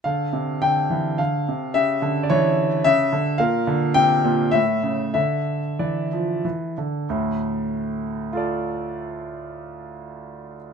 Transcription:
<<
  \new Staff \with { instrumentName = "Grand piano" } { \time 3/4 \key d \minor \tempo 4 = 98 << { f''4 g''4 f''4 | e''8.~ e''32 d''32 cis''4 e''4 | f''4 g''4 e''4 | e''4 d''4 r4 |
r2 <f' a' d''>4~ | <f' a' d''>2. | } \\ { a'2. | g'2. | bes'2 r4 | a'2. |
r2. | r2. | } >> }
  \new Staff \with { instrumentName = "Grand piano" } { \clef bass \time 3/4 \key d \minor d8 c8 d8 e8 d8 c8 | cis8 d8 e4 cis8 d8 | bes,8 d8 c8 bes,8 a,8 cis8 | d4 e8 f8 e8 d8 |
<d, a,>2.~ | <d, a,>2. | }
>>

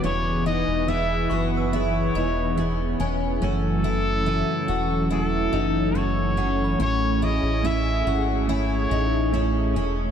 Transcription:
<<
  \new Staff \with { instrumentName = "Synth bell" } { \time 4/4 \key fis \dorian \tempo 4 = 71 r4. cis'''16 e'''4 r8. gis''8~ | gis''8 r2. fis''16 b''16 | cis'''4 r2. | }
  \new Staff \with { instrumentName = "Trumpet" } { \time 4/4 \key fis \dorian cis''8 dis''8 e''8 r8 cis''4. r8 | a'2 a'4 cis''4 | cis''8 dis''8 e''8 r8 cis''4. r8 | }
  \new Staff \with { instrumentName = "Twelve-string acoustic guitar" } { \time 4/4 \key fis \dorian cis'8 dis'8 e'8 fis'8 e'8 dis'8 cis'8 cis'8 | cis'8 e'8 e'8 fis'8 e'8 dis'8 cis'8 cis'8 | cis'8 e'8 e'8 fis'8 e'8 dis'8 cis'8 cis'8 | }
  \new Staff \with { instrumentName = "Clean electric guitar" } { \time 4/4 \key fis \dorian <e b e' gis'>8 <b e' gis'>8 <e b e' gis'>8 <b e' gis'>8 <e b e' gis'>8 <b e' gis'>8 <e b e' gis'>8 <b e' gis'>8 | <fis, cis e a cis' fis'>8 <e a cis' fis'>8 <fis, cis e a cis' fis'>8 <e a cis' fis'>8 <e a cis' fis'>8 <e a cis' fis'>8 <fis, cis e a cis' fis'>8 <e a cis' fis'>8 | <a cis' e' gis'>8 <cis' e' gis'>8 <a cis' e' gis'>8 <cis' e' gis'>8 <a cis' e' gis'>8 <cis' e' gis'>8 <a cis' e' gis'>8 <cis' e' gis'>8 | }
  \new Staff \with { instrumentName = "Analog synth pad" } { \time 4/4 \key fis \dorian <e b gis' b'>1 | <e fis cis' a'>1 | <a gis'>1 | }
  \new Staff \with { instrumentName = "Analog synth bass" } { \clef bass \time 4/4 \key fis \dorian e,,8. e,,8. fis,,4 e,,4 e,,8 | fis,,4~ fis,,16 r16 e,,4 fis,,4. | a,,8. a,,8. gis,,4 a,,4 e,,8 | }
>>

